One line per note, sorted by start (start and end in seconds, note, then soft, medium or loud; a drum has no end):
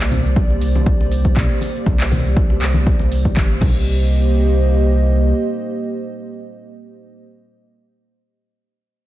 0.00 0.20 C2 loud
0.00 3.58 A#3 medium
0.00 3.58 G4 medium
0.00 3.58 C5 medium
0.00 3.58 D5 medium
0.00 clap medium
0.11 open hi-hat loud
0.11 muted conga soft
0.11 high conga medium
0.11 low conga medium
0.11 shaker medium
0.25 0.57 C2 loud
0.25 shaker soft
0.36 kick loud
0.36 shaker soft
0.50 muted conga medium
0.61 0.95 C2 loud
0.61 open hi-hat loud
0.61 shaker medium
0.75 muted conga soft
0.75 high conga medium
0.75 shaker soft
0.86 kick loud
0.86 shaker medium
0.99 1.32 C2 medium
0.99 muted conga medium
1.12 open hi-hat medium
1.12 shaker medium
1.25 kick medium
1.25 shaker soft
1.36 1.47 C2 loud
1.36 kick loud
1.36 clap medium
1.36 muted conga soft
1.36 low conga loud
1.36 shaker medium
1.61 open hi-hat medium
1.61 muted conga medium
1.61 shaker medium
1.76 shaker soft
1.86 2.20 C2 loud
1.86 kick loud
1.86 muted conga medium
1.86 high conga loud
1.86 shaker medium
2.00 clap medium
2.00 shaker soft
2.11 open hi-hat loud
2.11 muted conga soft
2.11 high conga medium
2.11 low conga loud
2.11 shaker loud
2.25 2.58 C2 loud
2.25 shaker soft
2.37 kick loud
2.37 shaker soft
2.50 muted conga medium
2.50 high conga medium
2.61 2.95 C2 loud
2.61 clap medium
2.61 open hi-hat loud
2.61 shaker medium
2.74 muted conga soft
2.74 high conga medium
2.74 shaker soft
2.86 kick loud
2.86 high conga medium
2.86 shaker medium
2.99 3.33 C2 medium
2.99 muted conga medium
2.99 shaker soft
3.12 open hi-hat medium
3.12 shaker medium
3.25 kick medium
3.25 shaker soft
3.36 3.61 G1 medium
3.36 kick loud
3.36 clap medium
3.36 muted conga soft
3.36 high conga medium
3.36 shaker medium
3.61 5.33 C2 loud
3.61 7.23 A#3 medium
3.61 7.23 G4 medium
3.61 7.23 C5 medium
3.61 7.23 D#5 medium
3.61 kick loud
3.61 crash medium
3.61 muted conga medium
3.61 low conga medium